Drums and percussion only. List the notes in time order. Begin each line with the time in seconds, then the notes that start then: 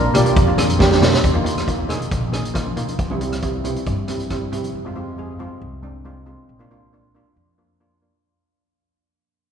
0.15 cross-stick, closed hi-hat, low conga
0.26 closed hi-hat
0.36 kick, closed hi-hat
0.58 cross-stick, closed hi-hat, high conga
0.70 closed hi-hat
0.80 kick, snare
0.91 snare, high conga
1.01 snare, low conga
1.14 snare
1.24 kick, closed hi-hat
1.35 high conga
1.46 closed hi-hat
1.58 cross-stick, closed hi-hat
1.68 kick, closed hi-hat
1.89 cross-stick, closed hi-hat, low conga
2.02 closed hi-hat
2.11 kick, closed hi-hat
2.33 cross-stick, closed hi-hat, high conga
2.45 closed hi-hat
2.55 kick, cross-stick, closed hi-hat
2.66 high conga
2.77 closed hi-hat, low conga
2.88 closed hi-hat, high conga
2.99 kick, closed hi-hat
3.10 high conga
3.21 closed hi-hat
3.32 cross-stick, closed hi-hat
3.42 kick, closed hi-hat
3.64 closed hi-hat, high conga, low conga
3.76 closed hi-hat
3.86 kick, closed hi-hat
4.08 cross-stick, closed hi-hat, high conga
4.20 closed hi-hat
4.30 kick, cross-stick, closed hi-hat
4.52 closed hi-hat, low conga
4.64 closed hi-hat, high conga